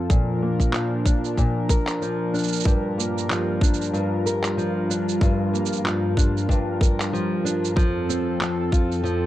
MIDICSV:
0, 0, Header, 1, 4, 480
1, 0, Start_track
1, 0, Key_signature, -2, "minor"
1, 0, Tempo, 638298
1, 77, Time_signature, 4, 2, 24, 8
1, 6966, End_track
2, 0, Start_track
2, 0, Title_t, "Nylon-string guitar"
2, 0, Program_c, 0, 24
2, 0, Note_on_c, 0, 53, 77
2, 0, Note_on_c, 0, 60, 67
2, 0, Note_on_c, 0, 65, 55
2, 0, Note_on_c, 0, 69, 63
2, 76, Note_on_c, 0, 46, 83
2, 127, Note_off_c, 0, 60, 0
2, 128, Note_off_c, 0, 69, 0
2, 318, Note_on_c, 0, 58, 56
2, 554, Note_off_c, 0, 53, 0
2, 557, Note_on_c, 0, 53, 58
2, 795, Note_off_c, 0, 65, 0
2, 798, Note_on_c, 0, 62, 49
2, 1029, Note_off_c, 0, 46, 0
2, 1038, Note_on_c, 0, 46, 73
2, 1278, Note_on_c, 0, 70, 64
2, 1514, Note_off_c, 0, 53, 0
2, 1517, Note_on_c, 0, 53, 67
2, 1753, Note_off_c, 0, 62, 0
2, 1756, Note_on_c, 0, 62, 57
2, 1996, Note_off_c, 0, 46, 0
2, 1999, Note_on_c, 0, 43, 77
2, 2237, Note_off_c, 0, 58, 0
2, 2240, Note_on_c, 0, 58, 60
2, 2480, Note_off_c, 0, 53, 0
2, 2483, Note_on_c, 0, 53, 64
2, 2720, Note_off_c, 0, 62, 0
2, 2723, Note_on_c, 0, 62, 50
2, 2949, Note_off_c, 0, 43, 0
2, 2958, Note_on_c, 0, 43, 74
2, 3200, Note_off_c, 0, 70, 0
2, 3203, Note_on_c, 0, 70, 60
2, 3437, Note_off_c, 0, 53, 0
2, 3440, Note_on_c, 0, 53, 65
2, 3676, Note_off_c, 0, 62, 0
2, 3685, Note_on_c, 0, 62, 58
2, 3915, Note_off_c, 0, 43, 0
2, 3924, Note_on_c, 0, 43, 84
2, 4152, Note_off_c, 0, 58, 0
2, 4161, Note_on_c, 0, 58, 60
2, 4393, Note_off_c, 0, 53, 0
2, 4396, Note_on_c, 0, 53, 60
2, 4630, Note_off_c, 0, 62, 0
2, 4639, Note_on_c, 0, 62, 55
2, 4872, Note_off_c, 0, 43, 0
2, 4881, Note_on_c, 0, 43, 79
2, 5115, Note_off_c, 0, 70, 0
2, 5124, Note_on_c, 0, 70, 61
2, 5359, Note_off_c, 0, 53, 0
2, 5362, Note_on_c, 0, 53, 74
2, 5591, Note_off_c, 0, 62, 0
2, 5600, Note_on_c, 0, 62, 59
2, 5832, Note_off_c, 0, 53, 0
2, 5835, Note_on_c, 0, 53, 84
2, 5892, Note_off_c, 0, 62, 0
2, 5893, Note_off_c, 0, 43, 0
2, 5893, Note_off_c, 0, 58, 0
2, 5894, Note_off_c, 0, 70, 0
2, 6085, Note_on_c, 0, 60, 56
2, 6312, Note_off_c, 0, 60, 0
2, 6321, Note_on_c, 0, 60, 71
2, 6558, Note_on_c, 0, 65, 57
2, 6792, Note_off_c, 0, 53, 0
2, 6795, Note_on_c, 0, 53, 74
2, 6966, Note_off_c, 0, 53, 0
2, 6966, Note_off_c, 0, 60, 0
2, 6966, Note_off_c, 0, 65, 0
2, 6966, End_track
3, 0, Start_track
3, 0, Title_t, "Analog synth pad"
3, 0, Program_c, 1, 89
3, 0, Note_on_c, 1, 53, 71
3, 74, Note_on_c, 1, 62, 69
3, 77, Note_on_c, 1, 70, 85
3, 79, Note_on_c, 1, 46, 78
3, 1968, Note_off_c, 1, 53, 0
3, 1976, Note_off_c, 1, 62, 0
3, 1979, Note_off_c, 1, 46, 0
3, 1998, Note_on_c, 1, 65, 73
3, 1999, Note_on_c, 1, 43, 84
3, 2000, Note_on_c, 1, 55, 72
3, 5807, Note_off_c, 1, 70, 0
3, 5808, Note_off_c, 1, 43, 0
3, 5808, Note_off_c, 1, 55, 0
3, 5808, Note_off_c, 1, 65, 0
3, 5827, Note_on_c, 1, 69, 89
3, 5829, Note_on_c, 1, 53, 69
3, 5830, Note_on_c, 1, 60, 72
3, 5832, Note_on_c, 1, 41, 79
3, 6966, Note_off_c, 1, 41, 0
3, 6966, Note_off_c, 1, 53, 0
3, 6966, Note_off_c, 1, 60, 0
3, 6966, Note_off_c, 1, 69, 0
3, 6966, End_track
4, 0, Start_track
4, 0, Title_t, "Drums"
4, 74, Note_on_c, 9, 36, 105
4, 79, Note_on_c, 9, 82, 43
4, 150, Note_off_c, 9, 36, 0
4, 154, Note_off_c, 9, 82, 0
4, 449, Note_on_c, 9, 36, 54
4, 456, Note_on_c, 9, 82, 43
4, 524, Note_off_c, 9, 36, 0
4, 531, Note_off_c, 9, 82, 0
4, 550, Note_on_c, 9, 39, 68
4, 557, Note_on_c, 9, 82, 31
4, 625, Note_off_c, 9, 39, 0
4, 632, Note_off_c, 9, 82, 0
4, 794, Note_on_c, 9, 36, 93
4, 798, Note_on_c, 9, 82, 71
4, 869, Note_off_c, 9, 36, 0
4, 874, Note_off_c, 9, 82, 0
4, 936, Note_on_c, 9, 82, 41
4, 1011, Note_off_c, 9, 82, 0
4, 1034, Note_on_c, 9, 36, 55
4, 1037, Note_on_c, 9, 82, 31
4, 1109, Note_off_c, 9, 36, 0
4, 1112, Note_off_c, 9, 82, 0
4, 1273, Note_on_c, 9, 36, 90
4, 1277, Note_on_c, 9, 82, 73
4, 1349, Note_off_c, 9, 36, 0
4, 1352, Note_off_c, 9, 82, 0
4, 1406, Note_on_c, 9, 39, 70
4, 1413, Note_on_c, 9, 82, 42
4, 1481, Note_off_c, 9, 39, 0
4, 1488, Note_off_c, 9, 82, 0
4, 1520, Note_on_c, 9, 82, 31
4, 1595, Note_off_c, 9, 82, 0
4, 1763, Note_on_c, 9, 82, 33
4, 1792, Note_off_c, 9, 82, 0
4, 1792, Note_on_c, 9, 82, 38
4, 1830, Note_off_c, 9, 82, 0
4, 1830, Note_on_c, 9, 82, 42
4, 1863, Note_off_c, 9, 82, 0
4, 1863, Note_on_c, 9, 82, 44
4, 1899, Note_off_c, 9, 82, 0
4, 1899, Note_on_c, 9, 82, 52
4, 1925, Note_off_c, 9, 82, 0
4, 1925, Note_on_c, 9, 82, 52
4, 1953, Note_off_c, 9, 82, 0
4, 1953, Note_on_c, 9, 82, 57
4, 1980, Note_off_c, 9, 82, 0
4, 1980, Note_on_c, 9, 82, 63
4, 1996, Note_on_c, 9, 36, 101
4, 2055, Note_off_c, 9, 82, 0
4, 2071, Note_off_c, 9, 36, 0
4, 2254, Note_on_c, 9, 82, 75
4, 2329, Note_off_c, 9, 82, 0
4, 2390, Note_on_c, 9, 82, 42
4, 2465, Note_off_c, 9, 82, 0
4, 2483, Note_on_c, 9, 39, 65
4, 2490, Note_on_c, 9, 82, 32
4, 2558, Note_off_c, 9, 39, 0
4, 2565, Note_off_c, 9, 82, 0
4, 2717, Note_on_c, 9, 36, 99
4, 2733, Note_on_c, 9, 82, 71
4, 2792, Note_off_c, 9, 36, 0
4, 2808, Note_off_c, 9, 82, 0
4, 2811, Note_on_c, 9, 82, 57
4, 2867, Note_off_c, 9, 82, 0
4, 2867, Note_on_c, 9, 82, 41
4, 2889, Note_off_c, 9, 82, 0
4, 2889, Note_on_c, 9, 82, 46
4, 2964, Note_off_c, 9, 82, 0
4, 2964, Note_on_c, 9, 82, 32
4, 3040, Note_off_c, 9, 82, 0
4, 3207, Note_on_c, 9, 82, 65
4, 3282, Note_off_c, 9, 82, 0
4, 3335, Note_on_c, 9, 39, 70
4, 3342, Note_on_c, 9, 82, 43
4, 3410, Note_off_c, 9, 39, 0
4, 3417, Note_off_c, 9, 82, 0
4, 3449, Note_on_c, 9, 82, 31
4, 3524, Note_off_c, 9, 82, 0
4, 3690, Note_on_c, 9, 82, 70
4, 3765, Note_off_c, 9, 82, 0
4, 3825, Note_on_c, 9, 82, 41
4, 3900, Note_off_c, 9, 82, 0
4, 3920, Note_on_c, 9, 36, 104
4, 3929, Note_on_c, 9, 82, 29
4, 3995, Note_off_c, 9, 36, 0
4, 4004, Note_off_c, 9, 82, 0
4, 4171, Note_on_c, 9, 82, 70
4, 4247, Note_off_c, 9, 82, 0
4, 4253, Note_on_c, 9, 82, 56
4, 4305, Note_off_c, 9, 82, 0
4, 4305, Note_on_c, 9, 82, 37
4, 4332, Note_off_c, 9, 82, 0
4, 4332, Note_on_c, 9, 82, 45
4, 4404, Note_on_c, 9, 39, 64
4, 4407, Note_off_c, 9, 82, 0
4, 4411, Note_on_c, 9, 82, 27
4, 4479, Note_off_c, 9, 39, 0
4, 4487, Note_off_c, 9, 82, 0
4, 4640, Note_on_c, 9, 36, 93
4, 4652, Note_on_c, 9, 82, 68
4, 4715, Note_off_c, 9, 36, 0
4, 4727, Note_off_c, 9, 82, 0
4, 4792, Note_on_c, 9, 82, 37
4, 4867, Note_off_c, 9, 82, 0
4, 4880, Note_on_c, 9, 36, 56
4, 4896, Note_on_c, 9, 82, 31
4, 4955, Note_off_c, 9, 36, 0
4, 4971, Note_off_c, 9, 82, 0
4, 5120, Note_on_c, 9, 36, 91
4, 5134, Note_on_c, 9, 82, 67
4, 5195, Note_off_c, 9, 36, 0
4, 5210, Note_off_c, 9, 82, 0
4, 5265, Note_on_c, 9, 39, 67
4, 5272, Note_on_c, 9, 82, 39
4, 5340, Note_off_c, 9, 39, 0
4, 5347, Note_off_c, 9, 82, 0
4, 5375, Note_on_c, 9, 82, 30
4, 5450, Note_off_c, 9, 82, 0
4, 5611, Note_on_c, 9, 82, 69
4, 5687, Note_off_c, 9, 82, 0
4, 5749, Note_on_c, 9, 82, 41
4, 5824, Note_off_c, 9, 82, 0
4, 5840, Note_on_c, 9, 36, 104
4, 5856, Note_on_c, 9, 82, 28
4, 5915, Note_off_c, 9, 36, 0
4, 5931, Note_off_c, 9, 82, 0
4, 6089, Note_on_c, 9, 82, 71
4, 6164, Note_off_c, 9, 82, 0
4, 6323, Note_on_c, 9, 39, 67
4, 6330, Note_on_c, 9, 82, 28
4, 6398, Note_off_c, 9, 39, 0
4, 6405, Note_off_c, 9, 82, 0
4, 6560, Note_on_c, 9, 36, 89
4, 6569, Note_on_c, 9, 82, 65
4, 6635, Note_off_c, 9, 36, 0
4, 6644, Note_off_c, 9, 82, 0
4, 6705, Note_on_c, 9, 82, 37
4, 6780, Note_off_c, 9, 82, 0
4, 6809, Note_on_c, 9, 82, 30
4, 6885, Note_off_c, 9, 82, 0
4, 6966, End_track
0, 0, End_of_file